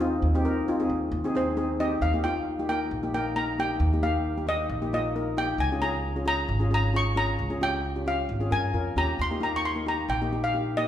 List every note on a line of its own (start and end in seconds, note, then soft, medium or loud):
0.00 0.19 D#2 loud
0.00 0.21 C4 medium
0.00 0.21 D#4 medium
0.00 0.21 F4 medium
0.22 0.86 D#2 medium
0.35 0.41 C4 medium
0.35 0.41 D#4 medium
0.35 0.41 G4 medium
0.45 0.59 C4 medium
0.45 0.59 D#4 medium
0.45 0.59 A#4 medium
0.68 0.75 C4 medium
0.68 0.75 D#4 medium
0.68 0.75 F4 medium
0.80 1.06 C4 medium
0.80 1.06 D#4 medium
0.80 1.06 G#4 medium
0.89 1.11 D#2 medium
1.12 1.97 D#2 medium
1.24 1.30 C4 medium
1.24 1.31 D#4 medium
1.24 1.31 G#4 medium
1.35 1.49 C4 medium
1.35 1.49 D#4 medium
1.35 1.49 G#4 medium
1.35 1.82 C5 medium
1.57 1.71 C4 medium
1.57 1.71 D#4 medium
1.57 1.71 G#4 medium
1.80 2.00 C4 medium
1.80 2.00 D#4 medium
1.80 2.00 G4 medium
1.80 2.03 D#5 medium
2.01 2.87 D#2 medium
2.01 2.25 F5 medium
2.13 2.20 A#3 medium
2.13 2.20 D#4 medium
2.13 2.20 G4 medium
2.24 2.44 A#3 medium
2.24 2.44 D#4 medium
2.24 2.44 F4 medium
2.24 2.65 G5 medium
2.59 2.65 A#3 medium
2.59 2.65 D#4 medium
2.59 2.65 G4 medium
2.69 2.89 A#3 medium
2.69 2.89 D#4 medium
2.69 2.89 A#4 medium
2.69 3.10 G5 medium
2.91 3.77 A#1 medium
3.03 3.09 A#3 medium
3.03 3.09 D#4 medium
3.03 3.10 G4 medium
3.14 3.28 A#3 medium
3.14 3.28 D#4 medium
3.14 3.28 A#4 medium
3.14 3.37 G5 medium
3.36 3.50 A#3 medium
3.36 3.50 D#4 medium
3.36 3.50 A#4 medium
3.36 3.46 A#5 medium
3.58 3.79 A#3 medium
3.58 3.79 D#4 medium
3.58 3.79 G4 medium
3.58 4.05 G5 medium
3.80 4.66 D#2 loud
3.93 3.99 A#3 medium
3.93 3.99 D#4 medium
3.93 3.99 G4 medium
4.02 4.23 A#3 medium
4.02 4.23 D#4 medium
4.02 4.23 G4 medium
4.02 4.49 F5 medium
4.37 4.44 A#3 medium
4.37 4.44 D#4 soft
4.37 4.44 G4 medium
4.47 4.67 A#3 medium
4.47 4.68 D#4 medium
4.47 4.68 G4 medium
4.47 4.90 D#5 medium
4.70 5.55 A#1 medium
4.82 4.88 A#3 medium
4.82 4.88 D#4 medium
4.82 4.88 G4 medium
4.93 5.07 A#3 medium
4.93 5.07 D#4 medium
4.93 5.07 F4 medium
4.93 5.39 D#5 medium
5.16 5.29 A#3 medium
5.16 5.30 D#4 medium
5.16 5.29 A#4 medium
5.37 5.57 A#3 medium
5.37 5.58 D#4 medium
5.37 5.58 G4 medium
5.37 5.61 G5 medium
5.58 6.45 C#2 medium
5.58 5.70 G#5 medium
5.72 5.78 C#4 medium
5.72 5.78 F4 medium
5.72 5.78 G#4 medium
5.82 6.02 C#4 medium
5.82 6.02 F4 medium
5.82 6.02 G#4 medium
5.82 6.26 A#5 medium
6.16 6.22 C#4 medium
6.16 6.23 F4 medium
6.16 6.23 G#4 medium
6.25 6.46 C#4 medium
6.25 6.46 F4 medium
6.25 6.47 G#4 medium
6.25 6.69 A#5 medium
6.49 7.35 G#1 loud
6.60 6.67 C#4 medium
6.60 6.67 F4 medium
6.60 6.67 G#4 medium
6.70 6.85 C#4 medium
6.70 6.85 F4 medium
6.70 6.85 G#4 medium
6.70 6.96 A#5 medium
6.94 7.08 C#4 medium
6.94 7.08 F4 medium
6.94 7.08 G#4 medium
6.94 7.16 C#6 medium
7.16 7.36 C#4 medium
7.16 7.36 F4 medium
7.16 7.37 G#4 medium
7.16 7.59 A#5 loud
7.39 8.25 C#2 medium
7.50 7.57 C#4 medium
7.50 7.57 F4 medium
7.50 7.57 G#4 medium
7.61 7.82 C#4 medium
7.61 7.82 F4 medium
7.61 7.82 G4 medium
7.61 8.08 G5 medium
7.96 8.02 C#4 medium
7.96 8.02 F4 soft
7.96 8.02 G4 medium
8.06 8.27 C#4 medium
8.06 8.27 F4 medium
8.06 8.27 G4 medium
8.06 8.53 F5 medium
8.29 8.50 G#1 medium
8.40 8.47 C#4 medium
8.40 8.47 F4 medium
8.40 8.47 G#4 medium
8.51 8.72 G2 medium
8.51 8.65 C#4 medium
8.51 8.65 F4 medium
8.51 8.65 A#4 medium
8.51 8.94 G#5 medium
8.74 8.94 F2 medium
8.74 8.88 C#4 medium
8.74 8.88 F4 medium
8.74 8.88 A#4 medium
8.96 9.16 D#2 medium
8.96 9.17 C#4 medium
8.96 9.17 F4 medium
8.96 9.17 G4 medium
8.96 9.20 A#5 medium
9.19 10.05 D#2 medium
9.19 9.41 C6 medium
9.31 9.37 A#3 medium
9.31 9.37 D#4 medium
9.31 9.37 G4 medium
9.40 9.61 A#3 medium
9.40 9.61 D#4 medium
9.40 9.61 G4 medium
9.40 9.54 A#5 medium
9.56 9.60 C#6 medium
9.65 9.88 C6 medium
9.76 9.82 A#3 medium
9.76 9.82 D#4 medium
9.76 9.82 A#4 medium
9.86 10.06 A#3 medium
9.86 10.06 D#4 soft
9.86 10.07 G4 medium
9.86 10.10 A#5 medium
10.08 10.88 A#1 medium
10.08 10.41 G5 medium
10.22 10.27 A#3 medium
10.22 10.27 D#4 medium
10.22 10.27 G4 medium
10.32 10.46 A#3 medium
10.32 10.46 D#4 medium
10.32 10.46 G4 medium
10.44 10.77 F5 medium
10.54 10.67 A#3 medium
10.54 10.68 D#4 medium
10.54 10.68 G4 medium
10.77 10.88 A#3 medium
10.77 10.88 D#4 medium
10.77 10.88 G4 medium
10.77 10.88 D#5 medium